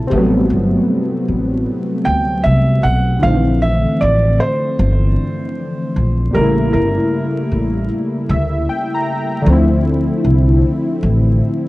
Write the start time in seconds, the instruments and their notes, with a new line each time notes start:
Already playing: synth keys E4, felt piano A5
0.07 upright bass A1, synth keys G3 C4
0.13 synth keys A3 B3
0.18 synth keys F#3
0.50 upright bass G1
1.28 upright bass A1
2.05 upright bass D2, felt piano G5
2.44 upright bass C2, felt piano E5
2.83 upright bass B1, felt piano F#5
3.19 synth keys D3 F3, felt piano F5
3.24 upright bass A#1, synth keys A3 C4
3.30 synth keys D#4
3.36 synth keys E3
3.62 felt piano E5
4.01 upright bass A1, felt piano D5
4.40 felt piano C5
4.79 upright bass G1
5.96 upright bass A#1
6.31 upright bass A1, synth keys A#2 G3, felt piano A#4
6.36 synth keys C#3 A3 A#3
6.41 synth keys E4
6.73 upright bass G1, felt piano A#4
7.52 upright bass A1
8.29 upright bass D2, synth keys E5
8.69 synth keys G5
8.95 synth keys A#5
9.42 synth keys D3 F3
9.46 upright bass D2, synth keys A3 C4
9.52 synth keys E4
10.25 upright bass C2
11.03 upright bass A1